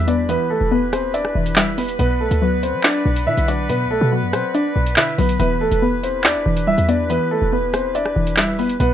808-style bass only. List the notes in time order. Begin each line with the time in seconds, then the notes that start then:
Already playing: E2
0.61 E1
1.35 E1
1.99 B1
2.31 D2
2.74 F#3
3.06 B1
3.27 B2
3.37 B1
3.69 B2
3.85 B1
4.01 B2
4.23 F#2
4.33 B2
4.76 B1
5.18 B1
5.40 E1
5.61 D1
5.72 E1
6.25 E2
6.35 E1
6.46 E1
6.67 D1
6.78 E2
7.42 E1
8.16 E1
8.80 B1